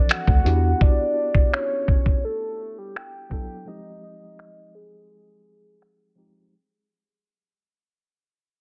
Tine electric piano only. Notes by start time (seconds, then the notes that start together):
0.44 B3 D4 E4 F#4 G4
3.30 F#3 B3 D4 E4 A4
3.65 F3 G#3 C4 D#4 G4
6.15 F3 G#3 C4 D#4 G4